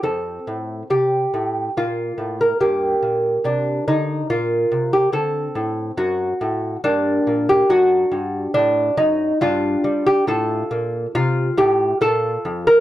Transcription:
<<
  \new Staff \with { instrumentName = "Lute" } { \time 3/4 \key g \minor \tempo 4 = 70 << { a'4 g'4 f'8. bes'16 | g'4 d'8 ees'8 f'8. g'16 | a'4 fis'4 d'8. g'16 | \key f \mixolydian fis'4 d'8 ees'8 f'8. g'16 |
a'4 f'8 g'8 a'8. bes'16 | } \\ { c'2 bes4 | bes2. | c'2 bes4 | d'2 d'4 |
f'2 f'4 | } >> }
  \new Staff \with { instrumentName = "Lute" } { \clef bass \time 3/4 \key g \minor f,8 a,8 c8 a,8 bes,8 a,8 | g,8 bes,8 c8 d8 bes,8 c8 | d8 a,8 fis,8 a,8 g,8 bes,8 | \key f \mixolydian fis,8 g,8 a,8 fis,8 g,8 g8 |
a,8 bes,8 c8 a,8 bes,8 f,8 | }
>>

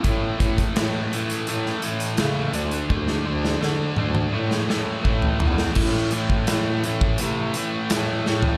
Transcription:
<<
  \new Staff \with { instrumentName = "Overdriven electric guitar" } { \clef bass \time 4/4 \key d \mixolydian \tempo 4 = 84 <a, e a>8 <a, e a>8 <a, e a>8 <a, e a>8 <a, e a>8 <a, e a>8 <a, e a>8 <d a d'>8 | <d a d'>8 <d a d'>8 <d a d'>8 <d a d'>8 <a, e a>8 <a, e a>8 <a, e a>8 <a, e a>8 | <a, e a>8 <a, e a>8 <a, e a>8 <a, e a>8 <a, e a>8 <a, e a>8 <a, e a>8 <a, e a>8 | }
  \new Staff \with { instrumentName = "Bass clarinet" } { \clef bass \time 4/4 \key d \mixolydian a,8 a,8 a,8 r8 a,8 a,8 cis8 d,8 | d,8 d,8 d8 d,8 a,8 a,8 a,8 e,8 | a,8 a,8 a,8 a,8 c8 r8 a,8 a,8 | }
  \new DrumStaff \with { instrumentName = "Drums" } \drummode { \time 4/4 <hh bd>8 <hh bd>16 <hh bd>16 <hh sn>8 hh16 hh16 hh16 sn16 hh16 hh16 <hh sn>8 hh16 hh16 | bd16 sn8 sn16 sn8 toml16 toml16 r16 sn16 sn8 bd16 tomfh16 tomfh16 sn16 | <cymc bd>16 sn16 hh16 bd16 <hh sn>8 hh16 bd16 hh8 hh8 <hh sn>8 sn16 tomfh16 | }
>>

